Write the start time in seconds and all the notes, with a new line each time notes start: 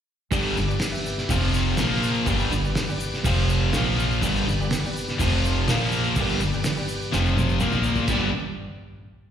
0.31 G1 G2 D3 G3 B3 G4 B4 D5, kick, open hi-hat, shaker
0.57 G1 G2 D3, shaker
0.67 G4 B4 D5, shaker
0.80 snare, open hi-hat, shaker
0.91 G4 B4 E5, shaker
1.06 shaker
1.18 snare, shaker
1.29 F1 F2 C3 F3 C4 F4 C5 F5, kick, open hi-hat, shaker
1.53 snare, shaker
1.77 A#1 A#2 F3 A#3 F4 A#4 F5, snare, open hi-hat, shaker
2.03 shaker
2.14 shaker
2.26 G1 G2 D3 G3 G4 B4 D5, kick, open hi-hat, shaker
2.30 B3
2.39 shaker
2.51 G1 G2 D3, shaker
2.64 G4 B4 D5, shaker
2.75 snare, open hi-hat, shaker
2.89 G4 B4 D5, shaker
3.00 shaker
3.14 snare, shaker
3.24 F1 F2 C3 F3 C4 F4 C5 F5, kick, open hi-hat, shaker
3.49 shaker
3.72 A#1 A#2 F3 A#3 F4 F5, snare, open hi-hat, shaker
3.76 F4 A#4 F5
3.99 shaker
4.12 shaker
4.20 G1 G2 D3 G3 B3 G4 B4 D5, kick, open hi-hat, shaker
4.35 shaker
4.47 G1 G2 D3, shaker
4.61 G4 B4 D5, shaker
4.71 snare, open hi-hat, shaker
4.85 G4 B4 D5, shaker
4.97 shaker
5.08 snare, shaker
5.18 F1 F2 C3 F3 C4 F4 C5 F5, kick, open hi-hat, shaker
5.45 shaker
5.68 A#1 A#2 F3 A#3 F4 A#4 F5, snare, open hi-hat, shaker
5.92 shaker
6.04 shaker
6.16 G1 G2 D3 G3 B3 G4 B4 D5, kick, open hi-hat, shaker
6.20 G4 D5
6.29 shaker
6.40 G1 G2 D3, shaker
6.53 G4 B4 D5, shaker
6.64 snare, open hi-hat, shaker
6.77 G4 B4 D5, shaker
6.89 shaker
7.02 shaker
7.12 F1 F2 C3 F3 C4 F4 C5 F5, snare, shaker
7.26 shaker
7.37 high tom, shaker
7.49 shaker
7.60 A#1 A#2 F3 A#3 F4 A#4 F5, mid tom, shaker
7.72 mid tom, shaker
7.83 floor tom, shaker
7.95 floor tom, shaker
8.07 G1 G2 D3 G3 B3 D4 G4 B4 D5, kick, crash, shaker
8.11 G4